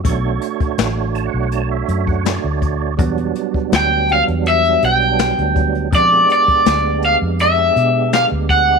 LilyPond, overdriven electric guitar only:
\new Staff \with { instrumentName = "Overdriven electric guitar" } { \time 4/4 \key b \minor \tempo 4 = 82 r1 | r4 g''8 eis''8 e''8 g''4. | d''8 d''4 f''8 e''4 f''8 fis''8 | }